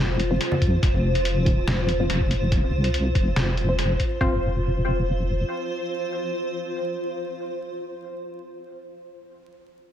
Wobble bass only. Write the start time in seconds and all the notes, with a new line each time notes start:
0.00 F1
0.62 F2
0.83 F1
1.67 F1
2.09 F1
2.73 C2
3.15 F1
4.21 F1